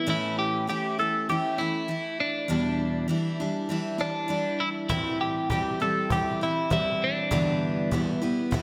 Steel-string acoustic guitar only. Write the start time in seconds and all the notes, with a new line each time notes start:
0.06 A2 E3 A3 C#4 E4
0.67 E3 A3 C#4 E4
0.98 A3 C#4 E4
1.29 E3 A3 C#4 E4
1.58 A3 C#4 E4
1.88 E3 A3 E4
2.48 E2 B2 E3 G3 D4 E4
3.08 E3 G3 D4 E4
3.40 E3 G3 D4 E4
3.69 E3 G3 D4 E4
3.98 E3 G3 D4 E4
4.28 E3 G3 D4 E4
4.89 A2 E3 G3 C4 E4
5.50 E3 G3 C4 E4
5.80 G3 C4 E4
6.11 E3 G3 C4 E4
6.41 G3 C4 E4
6.70 E3 G3 C4 E4
7.31 G2 D3 E3 G3 B3 E4
7.91 E3 G3 B3 E4
8.22 E3 G3 B3 E4
8.51 E3 G3 B3 E4